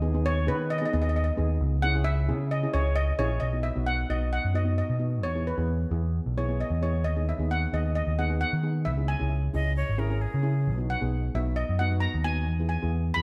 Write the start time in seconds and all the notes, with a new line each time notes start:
Already playing: D#2 D#5
0.02 B3 D#4 G#4
0.14 B3 D#4 G#4
0.26 C#5
0.47 D#3 B3 D#4 G#4 B4
0.70 D#5
0.78 B3 D#4 G#4 D#5
0.86 D#5
0.93 D#2 B3 D#4 G#4 D#5
1.02 D#5
1.09 D#5
1.16 D#5
1.24 D#5
1.37 D#2 B3 D#4 G#4
1.60 C#2
1.82 C#4 E4 G#4 F#5
1.94 C#4 E4 G#4
2.04 E5
2.28 C#3 C#4 E4 G#4
2.51 D#5
2.63 C#4 E4 G#4
2.74 C#2 C#4 E4 G#4 C#5
2.96 D#5
3.19 A#1 C#4 E4 G#4 C#5
3.40 B1 D#5
3.53 B3 D#4 F#4
3.63 E5
3.76 B1 B3 D#4 F#4
3.86 F#5
4.09 B1 B3 D#4 F#4 D#5
4.33 F#5
4.44 F#2
4.54 B3 D#4 F#4 D#5
4.64 B3 D#4 F#4
4.78 D#5
4.90 B2
4.99 B3 D#4 F#4
5.23 E2 C#5
5.35 B3 E4 G#4
5.47 B4
5.58 E2 B3 E4 G#4
5.91 E2 B3 E4 G#4
6.26 B1
6.37 B3 E4 G#4 C#5
6.48 B3 E4 G#4
6.60 D#5
6.70 E2
6.82 B3 E4 G#4 C#5
7.04 D#2 D#5
7.16 B3 D#4 G#4
7.29 E5
7.39 D#2 B3 D#4 G#4
7.51 F#5
7.73 D#2 B3 D#4 G#4 D#5
7.95 D#5
8.07 D#2
8.19 B3 D#4 G#4 F#5
8.30 B3 D#4 G#4
8.41 F#5
8.53 D#3
8.63 B3 D#4 G#4
8.85 C#2 E5
8.97 C#4 E4 G#4
9.08 G#5
9.19 C#2 C#4 E4 G#4
9.53 C#2 C#4 E4 G#4 D#5
9.76 C#5
9.89 G#1
9.98 C#4 E4 G#4 A#4
10.10 C#4 E4 G#4
10.21 G#4
10.34 C#3
10.43 C#4 E4 G#4
10.67 B1
10.78 B3 D#4 F#4
10.90 F#5
11.01 B1 B3 D#4 G#4
11.35 B1 B3 D#4 F#4 E5
11.56 D#5
11.69 F#2
11.79 B3 D#4 F#4 F#5
11.92 B3 D#4 F#4
12.00 A#5
12.14 D#2
12.24 B3 D#4 F#4 G#5
12.48 E2
12.60 B3 E4 G#4
12.69 G#5
12.82 E2 B3 E4 G#4
13.14 E2 B3 E4 G#4 B5